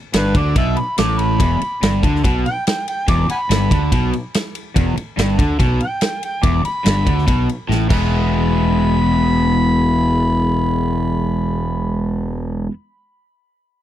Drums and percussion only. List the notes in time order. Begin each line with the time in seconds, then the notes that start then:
0.13 snare, ride
0.35 kick, ride
0.56 kick, ride
0.77 ride
0.98 snare, ride
1.19 ride
1.40 kick, ride
1.62 ride
1.83 snare, ride
2.03 kick, ride
2.16 snare
2.24 kick, ride
2.46 ride
2.67 snare, ride
2.88 ride
3.08 kick, ride
3.29 ride
3.51 snare, ride
3.71 kick, ride
3.92 kick, ride
4.13 ride
4.34 snare, ride
4.55 ride
4.76 kick, ride
4.97 ride
5.19 snare, ride
5.39 kick, ride
5.60 kick, ride
5.80 ride
6.01 snare, ride
6.23 ride
6.43 kick, ride
6.65 ride
6.86 snare, ride
7.07 kick, ride
7.18 snare
7.28 kick, ride
7.49 ride
7.71 snare
7.90 kick, crash